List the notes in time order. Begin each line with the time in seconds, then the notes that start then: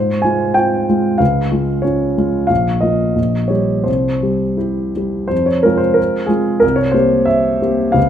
Already playing: G#2 C5
0.22 G#3 F4 G#5
0.54 C4 F4 G5
0.89 G#3 F4
1.18 C#2 F5
1.52 G#3 F4
1.82 C#4 F4 C#5
2.17 G#3 F4
2.47 A#1 F5
2.81 A#3 F4 D#5
3.16 A#1
3.48 G3 G4 C#5
3.84 C2 C5
4.23 G3 G4
4.57 E4 G4
4.96 G3 G4
5.28 F2 C5
5.46 C#5
5.63 G#3 C4 F4 A#4
5.78 C5
5.94 A#4
6.26 G#3 C4 F4 G#4
6.60 C2 A#4
6.76 C#5
6.92 A#3 C4 G4 C5
7.25 E5
7.61 A#3 C4 G4
7.92 C#2 F5